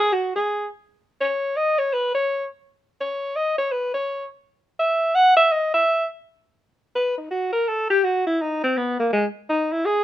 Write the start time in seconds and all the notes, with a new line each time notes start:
0.00 G#4
0.13 F#4
0.35 G#4
1.21 C#5
1.56 D#5
1.78 C#5
1.93 B4
2.15 C#5
3.01 C#5
3.36 D#5
3.58 C#5
3.72 B4
3.94 C#5
4.79 E5
5.15 F#5
5.37 E5
5.52 D#5
5.74 E5
6.95 B4
7.18 D#4
7.30 F#4
7.52 A#4
7.68 A4
7.90 G4
8.04 F#4
8.27 E4
8.41 D#4
8.63 C4
8.77 B3
8.99 A#3
9.13 G#3
9.49 D#4
9.72 E4
9.85 G#4